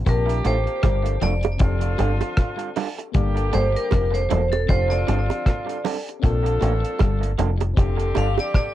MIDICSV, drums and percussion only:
0, 0, Header, 1, 2, 480
1, 0, Start_track
1, 0, Key_signature, -1, "major"
1, 0, Tempo, 770218
1, 41, Time_signature, 4, 2, 24, 8
1, 5447, End_track
2, 0, Start_track
2, 0, Title_t, "Drums"
2, 40, Note_on_c, 9, 36, 111
2, 40, Note_on_c, 9, 42, 89
2, 102, Note_off_c, 9, 36, 0
2, 102, Note_off_c, 9, 42, 0
2, 183, Note_on_c, 9, 42, 54
2, 245, Note_off_c, 9, 42, 0
2, 279, Note_on_c, 9, 42, 71
2, 282, Note_on_c, 9, 60, 48
2, 341, Note_off_c, 9, 42, 0
2, 344, Note_off_c, 9, 60, 0
2, 418, Note_on_c, 9, 42, 52
2, 480, Note_off_c, 9, 42, 0
2, 517, Note_on_c, 9, 37, 100
2, 518, Note_on_c, 9, 42, 100
2, 518, Note_on_c, 9, 60, 62
2, 521, Note_on_c, 9, 36, 113
2, 580, Note_off_c, 9, 37, 0
2, 580, Note_off_c, 9, 42, 0
2, 580, Note_off_c, 9, 60, 0
2, 583, Note_off_c, 9, 36, 0
2, 658, Note_on_c, 9, 42, 55
2, 721, Note_off_c, 9, 42, 0
2, 757, Note_on_c, 9, 42, 72
2, 763, Note_on_c, 9, 61, 69
2, 819, Note_off_c, 9, 42, 0
2, 826, Note_off_c, 9, 61, 0
2, 889, Note_on_c, 9, 42, 46
2, 901, Note_on_c, 9, 60, 74
2, 951, Note_off_c, 9, 42, 0
2, 964, Note_off_c, 9, 60, 0
2, 993, Note_on_c, 9, 42, 98
2, 998, Note_on_c, 9, 36, 123
2, 1055, Note_off_c, 9, 42, 0
2, 1061, Note_off_c, 9, 36, 0
2, 1129, Note_on_c, 9, 42, 58
2, 1191, Note_off_c, 9, 42, 0
2, 1237, Note_on_c, 9, 60, 67
2, 1238, Note_on_c, 9, 42, 71
2, 1300, Note_off_c, 9, 60, 0
2, 1301, Note_off_c, 9, 42, 0
2, 1375, Note_on_c, 9, 60, 65
2, 1377, Note_on_c, 9, 42, 50
2, 1437, Note_off_c, 9, 60, 0
2, 1440, Note_off_c, 9, 42, 0
2, 1475, Note_on_c, 9, 42, 83
2, 1476, Note_on_c, 9, 37, 114
2, 1479, Note_on_c, 9, 36, 93
2, 1538, Note_off_c, 9, 37, 0
2, 1538, Note_off_c, 9, 42, 0
2, 1541, Note_off_c, 9, 36, 0
2, 1613, Note_on_c, 9, 42, 55
2, 1675, Note_off_c, 9, 42, 0
2, 1719, Note_on_c, 9, 46, 94
2, 1725, Note_on_c, 9, 61, 69
2, 1781, Note_off_c, 9, 46, 0
2, 1788, Note_off_c, 9, 61, 0
2, 1864, Note_on_c, 9, 42, 52
2, 1927, Note_off_c, 9, 42, 0
2, 1959, Note_on_c, 9, 42, 87
2, 1962, Note_on_c, 9, 36, 114
2, 2021, Note_off_c, 9, 42, 0
2, 2024, Note_off_c, 9, 36, 0
2, 2099, Note_on_c, 9, 42, 52
2, 2162, Note_off_c, 9, 42, 0
2, 2199, Note_on_c, 9, 42, 76
2, 2204, Note_on_c, 9, 60, 48
2, 2262, Note_off_c, 9, 42, 0
2, 2266, Note_off_c, 9, 60, 0
2, 2345, Note_on_c, 9, 42, 49
2, 2407, Note_off_c, 9, 42, 0
2, 2436, Note_on_c, 9, 60, 65
2, 2444, Note_on_c, 9, 36, 118
2, 2445, Note_on_c, 9, 37, 103
2, 2445, Note_on_c, 9, 42, 103
2, 2498, Note_off_c, 9, 60, 0
2, 2506, Note_off_c, 9, 36, 0
2, 2507, Note_off_c, 9, 37, 0
2, 2507, Note_off_c, 9, 42, 0
2, 2584, Note_on_c, 9, 42, 57
2, 2647, Note_off_c, 9, 42, 0
2, 2683, Note_on_c, 9, 42, 81
2, 2688, Note_on_c, 9, 61, 78
2, 2745, Note_off_c, 9, 42, 0
2, 2750, Note_off_c, 9, 61, 0
2, 2819, Note_on_c, 9, 42, 47
2, 2821, Note_on_c, 9, 60, 70
2, 2882, Note_off_c, 9, 42, 0
2, 2884, Note_off_c, 9, 60, 0
2, 2924, Note_on_c, 9, 36, 111
2, 2924, Note_on_c, 9, 42, 93
2, 2986, Note_off_c, 9, 36, 0
2, 2987, Note_off_c, 9, 42, 0
2, 3061, Note_on_c, 9, 42, 56
2, 3123, Note_off_c, 9, 42, 0
2, 3168, Note_on_c, 9, 42, 76
2, 3168, Note_on_c, 9, 60, 64
2, 3230, Note_off_c, 9, 42, 0
2, 3231, Note_off_c, 9, 60, 0
2, 3303, Note_on_c, 9, 60, 66
2, 3310, Note_on_c, 9, 42, 50
2, 3366, Note_off_c, 9, 60, 0
2, 3372, Note_off_c, 9, 42, 0
2, 3404, Note_on_c, 9, 36, 93
2, 3406, Note_on_c, 9, 42, 75
2, 3407, Note_on_c, 9, 37, 102
2, 3466, Note_off_c, 9, 36, 0
2, 3469, Note_off_c, 9, 37, 0
2, 3469, Note_off_c, 9, 42, 0
2, 3548, Note_on_c, 9, 42, 52
2, 3610, Note_off_c, 9, 42, 0
2, 3644, Note_on_c, 9, 61, 67
2, 3651, Note_on_c, 9, 46, 90
2, 3707, Note_off_c, 9, 61, 0
2, 3713, Note_off_c, 9, 46, 0
2, 3794, Note_on_c, 9, 42, 58
2, 3856, Note_off_c, 9, 42, 0
2, 3885, Note_on_c, 9, 36, 115
2, 3889, Note_on_c, 9, 42, 84
2, 3947, Note_off_c, 9, 36, 0
2, 3951, Note_off_c, 9, 42, 0
2, 4026, Note_on_c, 9, 42, 53
2, 4088, Note_off_c, 9, 42, 0
2, 4117, Note_on_c, 9, 60, 43
2, 4126, Note_on_c, 9, 42, 72
2, 4179, Note_off_c, 9, 60, 0
2, 4188, Note_off_c, 9, 42, 0
2, 4266, Note_on_c, 9, 42, 47
2, 4328, Note_off_c, 9, 42, 0
2, 4358, Note_on_c, 9, 60, 68
2, 4365, Note_on_c, 9, 36, 124
2, 4366, Note_on_c, 9, 37, 108
2, 4366, Note_on_c, 9, 42, 100
2, 4420, Note_off_c, 9, 60, 0
2, 4427, Note_off_c, 9, 36, 0
2, 4428, Note_off_c, 9, 37, 0
2, 4428, Note_off_c, 9, 42, 0
2, 4505, Note_on_c, 9, 42, 63
2, 4568, Note_off_c, 9, 42, 0
2, 4602, Note_on_c, 9, 42, 81
2, 4606, Note_on_c, 9, 61, 71
2, 4665, Note_off_c, 9, 42, 0
2, 4668, Note_off_c, 9, 61, 0
2, 4739, Note_on_c, 9, 42, 47
2, 4741, Note_on_c, 9, 60, 69
2, 4801, Note_off_c, 9, 42, 0
2, 4804, Note_off_c, 9, 60, 0
2, 4843, Note_on_c, 9, 36, 127
2, 4846, Note_on_c, 9, 42, 97
2, 4906, Note_off_c, 9, 36, 0
2, 4908, Note_off_c, 9, 42, 0
2, 4982, Note_on_c, 9, 42, 54
2, 5044, Note_off_c, 9, 42, 0
2, 5079, Note_on_c, 9, 60, 68
2, 5088, Note_on_c, 9, 42, 84
2, 5141, Note_off_c, 9, 60, 0
2, 5151, Note_off_c, 9, 42, 0
2, 5220, Note_on_c, 9, 60, 65
2, 5228, Note_on_c, 9, 42, 52
2, 5282, Note_off_c, 9, 60, 0
2, 5291, Note_off_c, 9, 42, 0
2, 5324, Note_on_c, 9, 36, 98
2, 5327, Note_on_c, 9, 42, 77
2, 5328, Note_on_c, 9, 37, 115
2, 5387, Note_off_c, 9, 36, 0
2, 5389, Note_off_c, 9, 42, 0
2, 5390, Note_off_c, 9, 37, 0
2, 5447, End_track
0, 0, End_of_file